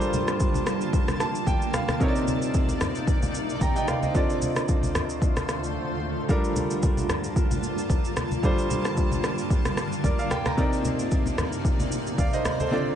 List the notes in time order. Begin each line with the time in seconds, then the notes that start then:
Already playing: G2 D3 G3 A#3 D4 F4 A4 A#4 C5 A5
0.01 shaker
0.13 high conga, shaker
0.28 cross-stick, shaker
0.40 kick, shaker
0.54 high conga, shaker
0.67 cross-stick, shaker
0.81 shaker
0.93 kick, shaker
1.08 cross-stick, high conga, shaker
1.20 A5, cross-stick, shaker
1.35 shaker
1.47 G5, kick, low conga, shaker
1.62 shaker
1.74 F5, cross-stick, high conga, shaker
1.89 cross-stick, high conga, shaker
2.00 C2 C3 C4 D#4 A#4 C#5 D5, kick, shaker
2.08 D5
2.16 shaker
2.28 high conga, shaker
2.42 shaker
2.54 kick, shaker
2.69 high conga, shaker
2.81 cross-stick, low conga, shaker
2.95 shaker
3.07 kick, shaker
3.22 high conga, shaker
3.35 shaker
3.49 shaker
3.61 G5 A#5, kick, low conga, shaker
3.76 D#5 G5, shaker
3.88 D5 F5, cross-stick, high conga, shaker
4.03 C5 D#5, high conga, shaker
4.14 D2 D3 A3 C4 F4 A4 C5 D5, kick, shaker
4.30 shaker
4.42 high conga, shaker
4.56 cross-stick, shaker
4.68 kick, shaker
4.83 high conga, shaker
4.95 cross-stick, low conga, shaker
5.09 shaker
5.22 kick, shaker
5.37 cross-stick, high conga, shaker
5.49 cross-stick, shaker
5.64 shaker
6.28 G2 G3 A#3 D4 F4 A4 A#4 A5, kick, shaker
6.44 shaker
6.56 high conga, shaker
6.71 shaker
6.83 kick, shaker
6.97 high conga, shaker
7.09 cross-stick, low conga, shaker
7.24 shaker
7.36 kick, shaker
7.51 high conga, shaker
7.63 shaker
7.78 shaker
7.90 kick, low conga, shaker
8.05 shaker
8.17 cross-stick, high conga, shaker
8.31 high conga, shaker
8.43 G3 D4 F4 A4 C5, kick, shaker
8.58 shaker
8.71 high conga, shaker
8.85 cross-stick, shaker
8.97 kick, shaker
9.12 high conga, shaker
9.24 cross-stick, shaker
9.38 shaker
9.50 kick, shaker
9.65 cross-stick, high conga, shaker
9.77 cross-stick, shaker
9.92 shaker
10.04 A#4 D5, kick, low conga, shaker
10.19 D5 F5, shaker
10.31 G5, cross-stick, high conga, shaker
10.46 G5 A#5, cross-stick, high conga, shaker
10.57 C2 C3 C4 D#4 A#4 D5, kick, shaker
10.73 shaker
10.85 high conga, shaker
10.99 shaker
11.11 kick, shaker
11.26 high conga, shaker
11.38 cross-stick, low conga, shaker
11.53 shaker
11.65 kick, shaker
11.80 high conga, shaker
11.92 shaker
12.07 shaker
12.18 D5 F5, kick, low conga, shaker
12.33 C5 D#5, shaker
12.45 cross-stick, high conga, shaker
12.60 A4 C5, high conga, shaker
12.71 D2 A2 D3 C4 F4 A4 D5